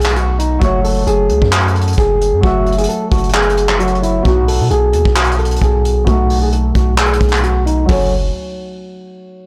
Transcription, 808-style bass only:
Already playing: B1
0.62 F#1
1.07 F#1
1.30 C#2
1.42 F#2
1.98 F#1
2.33 F#2
2.43 F#1
3.12 F#1
4.25 B1
4.60 B2
4.71 B1
4.93 D#2
5.05 B1
5.62 B1
6.07 B1
6.75 B1
7.21 B1
7.89 F#1

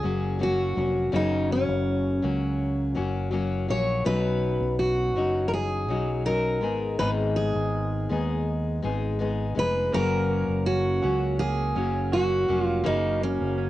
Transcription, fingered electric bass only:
0.04 F#1
0.77 F1
1.13 F#1
1.68 F#1
2.24 C#2
2.98 F#1
3.70 A#1
4.06 B1
4.60 B1
5.16 F#1
5.89 B1
6.63 G#1
7.01 G#1
7.55 G#1
8.10 D#2
8.85 G#1
9.57 F1
9.94 F#1
10.48 F#1
11.04 C#2
11.76 F#1
12.49 F1
12.87 F#1
13.41 F#1

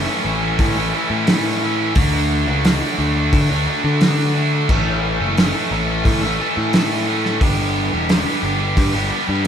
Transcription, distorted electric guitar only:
Already playing: A2 E3
0.06 A3 C#4 E4
0.23 E3 A3 C#4 E4
0.41 A3 C#4 E4
0.76 A3 C#4 E4
0.93 E3 A3 C#4 E4
1.10 A3 C#4 E4
1.26 A2 E3 A3 C#4 E4
1.61 E3 A3 C#4 E4
1.78 A3 C#4 E4
1.95 D3 A3 D4 F#4
2.47 A3 D4 F#4
2.64 D3 A3 D4 F#4
2.81 A3 D4 F#4
2.97 D3 A3 D4 F#4
3.15 A3 D4 F#4
3.49 A3 D4 F#4
3.67 D3 A3 D4 F#4
3.83 A3 D4 F#4
4.00 D3 A3 D4 F#4
4.35 D3 A3 D4 F#4
4.52 A3 D4 F#4
4.69 A2 E3 A3 C#4 A4
5.19 A3 C#4 A4
5.36 A2 E3 A3 C#4 A4
5.54 A3 C#4 A4
5.71 E3 A3 C#4 A4
5.88 A3 C#4 A4
6.22 A3 C#4 A4
6.38 E3 A3 C#4 A4
6.55 A3 C#4 A4
6.72 A2 E3 A3 C#4 A4
7.06 E3 A3 C#4 A4
7.24 A3 C#4 A4
7.41 G2 D3 G3 B3 D4 G4
7.92 G3 B3 D4 G4
8.09 G2 D3 G3 B3 D4 G4
8.26 G3 B3 D4 G4
8.43 G3 B3 D4 G4
8.59 G3 B3 D4 G4
8.93 G3 B3 D4 G4
9.10 G3 B3 D4 G4
9.27 G3 B3 D4 G4
9.44 G2

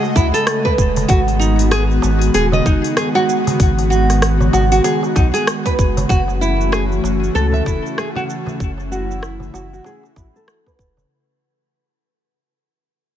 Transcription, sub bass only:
0.16 C#2
0.79 E1
1.10 G#1
2.03 G#1
2.34 D#1
2.66 F#1
3.60 G#1
4.54 G#1
5.16 B1
5.79 F#1
6.10 F#1
7.03 F#1
7.35 C#2
7.66 E1
8.60 F#1
9.54 F#1
10.16 A1
10.79 E1

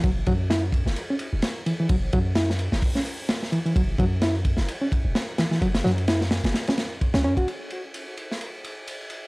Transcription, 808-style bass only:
0.04 F#1
0.27 F#2
0.86 F#1
1.33 E1
1.89 F#1
2.13 F#2
2.72 F#1
3.76 F#1
3.98 F#2
4.58 F#1
5.05 E1
5.61 F#1
5.84 F#2
6.44 F#1
7.14 C#2
7.24 F#2

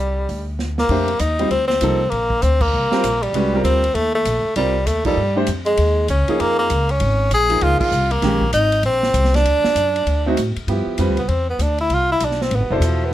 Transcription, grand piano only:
0.90 A3 D4 G4 C5
1.39 G3 C4 F4 C5
1.82 F3 A#3 D#4 A4
2.92 G3 C4 F4 A#4
3.34 G#3 C#4 F#4 B4
3.53 G3 C4 F4 A#4
4.56 G3 C4 F4 A#4
5.05 F3 A#3 D#4 A4
5.35 A3 D4 G4 C5
6.28 F3 A#3 D#4 G#4
7.50 F3 A#3 D#4 G#4
8.23 D#3 G#3 C#4 G4
10.26 A3 C4 D#4 F#4
10.68 F3 B3 E4 G4
10.99 G3 C4 F4 B4
12.70 B2 E4 A4 C5

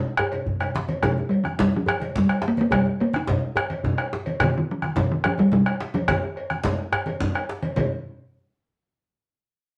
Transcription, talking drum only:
1.03 F3
1.29 G3
1.44 F3
1.59 G3
1.76 F3
2.18 G3
2.48 A#3
2.61 A#3
2.73 G3
3.01 A#3
3.16 D#4
4.43 D#3
4.58 D#3
4.71 F3
4.84 D#3
4.98 F3
5.12 D#3
5.26 F3
5.39 G3
5.53 G3
5.94 F3
6.09 D#3
7.77 D#3

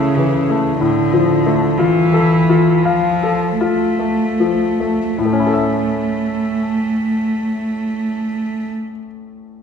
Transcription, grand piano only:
Already playing: A2 A3 E4 A4 E5
0.18 E3
0.50 A3
0.81 A2
1.14 F3
1.46 A3
1.79 F4
2.13 A4
2.49 F4
2.85 F5
3.23 A4
3.61 F4
3.99 A3
4.40 F3
4.80 A3
5.18 A2
5.25 A3
5.33 C#4
5.40 E4
5.47 A4
5.54 E5

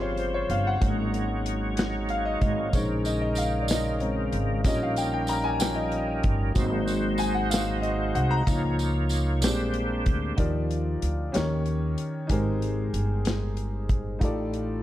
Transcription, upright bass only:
Already playing: G1
0.49 G1
0.82 G#1
2.42 G#1
2.74 A#1
4.33 G#1
4.65 A#1
6.24 G1
6.56 G#1
8.15 C2
8.47 C#2
9.43 A#1
10.06 D2
10.38 D#2
11.02 D2
11.35 D#2
12.29 G#1
12.94 G1
14.21 A1

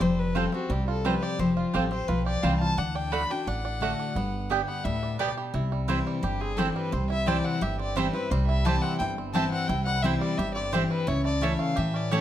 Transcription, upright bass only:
0.01 F1
0.69 C2
1.39 F1
1.74 A1
2.09 B1
2.43 C2
2.78 D2
3.47 A1
4.15 G1
4.85 D2
5.54 C2
6.23 G1
6.93 C2
7.62 G1
8.31 C2
9.00 G1
9.69 C2
10.39 G1
11.08 C#2
11.78 A2

